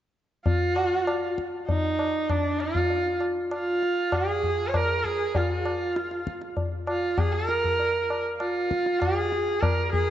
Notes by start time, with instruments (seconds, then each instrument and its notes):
0.46 sarangi F4, tabla tin, tabla ge
0.76 tabla na
1.07 tabla na
1.38 tabla ke
1.68 sarangi D#4, tabla tin, tabla ge
1.99 tabla na
2.30 sarangi D4, tabla na, tabla ge
2.60 sarangi F4, tabla te
2.75 tabla ge
2.90 tabla tin
3.20 tabla na
3.51 sarangi F4, tabla na
3.83 tabla te
4.12 sarangi G#4, tabla na, tabla ge
4.43 tabla ge
4.68 sarangi C#5
4.74 sarangi A#4, tabla na, tabla ge
5.04 sarangi G#4, tabla ge
5.35 sarangi F4, tabla tin, tabla ge
5.65 tabla na
5.96 tabla te
6.11 tabla te
6.27 tabla ke
6.41 tabla te
6.57 tabla tin, tabla ge
6.87 sarangi F4, tabla na
7.18 sarangi G#4, tabla na, tabla ge
7.33 sarangi A#4
7.49 tabla te
7.64 tabla ge
7.79 tabla tin
8.10 tabla na
8.38 sarangi F4, tabla na
8.71 tabla ke
8.86 tabla te
9.00 sarangi G#4, tabla na, tabla ge
9.32 tabla te
9.61 sarangi A#4, tabla na, tabla ge
9.92 sarangi G#4, tabla ge